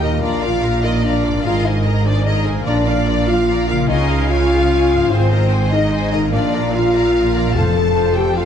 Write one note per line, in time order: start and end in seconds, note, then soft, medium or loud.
0.00 0.22 D#2 medium
0.00 1.37 A#2 medium
0.00 0.15 D#3 soft
0.00 2.62 A#3 soft
0.00 0.22 D#4 medium
0.00 0.19 G4 soft
0.00 0.22 G4 soft
0.00 0.16 A#4 soft
0.00 0.21 A#4 soft
0.00 0.22 D#5 medium
0.00 0.23 D#5 medium
0.00 0.22 A#5 soft
0.08 1.39 D4 soft
0.13 1.42 F4 soft
0.17 1.38 A#4 soft
0.22 1.45 A#1 medium
0.22 1.45 A#2 medium
0.22 0.43 D4 medium
0.22 0.41 F4 medium
0.22 0.41 A#4 medium
0.22 0.42 D5 medium
0.22 0.42 F5 soft
0.22 0.42 A#5 medium
0.42 0.61 F4 medium
0.42 0.83 F4 medium
0.42 0.61 A#4 medium
0.42 0.63 D5 medium
0.42 0.83 F5 medium
0.42 0.63 D6 soft
0.63 0.82 F4 medium
0.63 0.82 A#4 medium
0.63 0.84 F5 soft
0.63 0.83 A#5 soft
0.83 1.04 D#4 medium
0.83 1.02 F4 soft
0.83 1.03 A#4 medium
0.83 1.04 D5 soft
0.83 1.03 D#5 medium
0.83 1.04 D6 medium
1.03 1.45 D4 medium
1.03 1.23 F4 soft
1.03 1.23 A#4 soft
1.03 1.44 D5 medium
1.03 1.23 F5 soft
1.03 1.23 A#5 medium
1.24 2.59 G#2 medium
1.24 1.45 F4 medium
1.24 1.44 A#4 soft
1.24 1.45 D5 medium
1.24 1.45 D6 soft
1.31 2.62 C4 soft
1.35 2.64 G#4 soft
1.40 2.61 A#4 soft
1.44 2.64 G#1 medium
1.44 2.64 G#2 medium
1.44 1.65 F4 loud
1.44 1.64 G#4 medium
1.44 1.64 A#4 medium
1.44 1.64 D#5 medium
1.44 1.65 F5 medium
1.44 1.64 A#5 medium
1.64 2.06 D#4 medium
1.64 1.84 G#4 medium
1.64 1.84 A#4 medium
1.64 1.86 C5 medium
1.64 2.06 D#5 medium
1.64 1.85 G#5 medium
1.85 2.05 G#4 medium
1.85 2.05 A#4 medium
1.85 2.05 D#5 medium
1.85 2.06 A#5 medium
2.05 2.26 D4 medium
2.05 2.25 G#4 medium
2.05 2.25 A#4 medium
2.05 2.26 C5 medium
2.05 2.26 D5 medium
2.05 2.26 G#5 medium
2.25 2.47 D#4 medium
2.25 2.45 G#4 medium
2.25 2.45 A#4 medium
2.25 2.45 D#5 medium
2.25 2.44 A#5 medium
2.46 3.82 A#2 medium
2.46 2.67 G#4 medium
2.46 2.67 A#4 medium
2.46 2.67 C5 medium
2.46 2.67 G#5 medium
2.53 3.84 D4 soft
2.58 3.79 F4 soft
2.62 2.85 F4 medium
2.62 3.88 A#4 soft
2.62 2.85 D5 medium
2.62 2.86 A#5 medium
2.66 3.86 A#1 medium
2.66 3.24 A#2 medium
2.66 3.87 A#2 medium
2.66 2.86 D4 loud
2.66 2.74 D5 medium
2.66 2.86 D5 medium
2.86 3.27 D4 medium
2.86 3.08 A#4 medium
2.86 3.27 D5 medium
2.86 3.07 F5 medium
2.86 3.08 F5 medium
2.86 3.07 D6 medium
3.07 3.28 F4 medium
3.07 3.28 D5 medium
3.07 3.28 A#5 medium
3.27 3.67 F4 medium
3.27 3.48 A#4 medium
3.27 3.67 F5 medium
3.27 3.48 F5 medium
3.27 3.48 D6 medium
3.48 3.67 F4 medium
3.48 3.67 D5 medium
3.48 3.68 D5 medium
3.48 3.67 A#5 medium
3.68 5.03 C#3 medium
3.68 3.88 F4 medium
3.68 3.89 A#4 medium
3.68 3.77 F5 medium
3.68 3.88 F5 medium
3.68 3.89 F5 medium
3.68 3.89 D6 medium
3.76 5.06 C#4 soft
3.80 5.08 F4 soft
3.85 4.29 D#4 medium
3.85 5.06 G#4 soft
3.85 4.28 D#5 medium
3.85 4.08 G#5 medium
3.89 5.11 C#2 medium
3.89 5.11 C#3 medium
3.89 4.08 F4 medium
3.89 4.08 C#5 medium
3.89 4.08 F5 medium
4.09 4.29 G#4 medium
4.09 4.29 F5 medium
4.09 4.28 F5 medium
4.09 4.27 G#5 medium
4.28 5.09 F4 loud
4.28 4.50 F4 medium
4.28 4.50 C#5 medium
4.28 4.49 F5 medium
4.28 5.09 F5 medium
4.28 4.49 G#5 medium
4.50 4.70 G#4 medium
4.50 4.70 F5 medium
4.50 4.69 F5 medium
4.50 4.69 G#5 medium
4.71 4.90 F4 medium
4.71 4.89 C#5 medium
4.71 4.89 F5 medium
4.71 4.89 G#5 medium
4.91 6.26 G#2 medium
4.91 5.10 G#4 medium
4.91 5.11 F5 medium
4.91 5.11 G#5 medium
4.98 6.18 A#3 soft
5.03 6.30 D#4 soft
5.07 6.30 G#1 medium
5.07 6.30 G#2 medium
5.07 5.29 C4 loud
5.07 6.32 G#4 soft
5.07 5.28 C5 medium
5.12 5.30 G#4 medium
5.12 5.30 C5 medium
5.12 5.30 G#5 medium
5.30 5.71 C4 medium
5.30 5.51 G#4 medium
5.30 5.52 A#4 medium
5.30 5.70 C5 medium
5.30 5.52 D#5 medium
5.30 5.52 A#5 medium
5.52 5.72 G#4 medium
5.52 5.72 C5 medium
5.52 5.72 G#5 medium
5.71 6.11 D#4 loud
5.71 5.92 G#4 medium
5.71 5.93 A#4 medium
5.71 6.10 D#5 medium
5.71 5.92 D#5 medium
5.71 5.92 A#5 medium
5.91 6.12 G#4 medium
5.91 6.11 C5 medium
5.91 6.12 C5 medium
5.91 6.11 G#5 medium
6.12 7.48 A#2 medium
6.12 6.32 D#4 medium
6.12 6.33 G#4 medium
6.12 6.33 A#4 medium
6.12 6.20 D#5 medium
6.12 6.33 D#5 medium
6.12 6.33 A#5 medium
6.19 7.50 A#3 soft
6.23 7.52 D4 medium
6.28 7.49 F4 soft
6.28 6.72 D5 medium
6.33 7.55 A#1 medium
6.33 7.56 A#2 medium
6.33 6.73 D4 loud
6.33 6.52 F4 medium
6.33 6.52 A#4 medium
6.33 6.52 F5 medium
6.53 6.73 F4 medium
6.53 6.73 A#4 medium
6.53 6.74 D5 medium
6.53 6.74 A#5 medium
6.72 7.54 F4 medium
6.72 6.93 F4 medium
6.72 6.93 A#4 medium
6.72 7.53 F5 medium
6.72 6.94 F5 medium
6.94 7.13 F4 medium
6.94 7.14 A#4 medium
6.94 7.15 D5 medium
6.94 7.14 A#5 medium
7.15 7.34 F4 medium
7.15 7.34 A#4 medium
7.15 7.34 F5 medium
7.35 8.45 F3 medium
7.35 7.54 F4 medium
7.35 7.56 A#4 medium
7.35 7.56 D5 medium
7.35 7.56 A#5 medium
7.42 8.45 A3 soft
7.46 8.45 C4 soft
7.50 8.45 F4 soft
7.50 8.16 A5 medium
7.55 8.45 F1 medium
7.55 8.45 F2 medium
7.55 8.13 F2 medium
7.55 7.75 F4 medium
7.55 8.17 A4 loud
7.55 7.75 A4 medium
7.55 7.75 C5 medium
7.55 7.74 F5 medium
7.76 7.96 A4 medium
7.76 7.96 C5 medium
7.76 7.96 A5 medium
7.96 8.16 F4 medium
7.96 8.17 A4 medium
7.96 8.16 C5 medium
7.96 8.17 F5 medium
8.15 8.37 G4 loud
8.15 8.37 A4 medium
8.15 8.37 C5 medium
8.15 8.36 G5 medium
8.15 8.37 A5 medium
8.35 8.45 F4 medium
8.35 8.45 A4 medium
8.35 8.45 C5 medium
8.35 8.45 F5 medium
8.35 8.45 F5 soft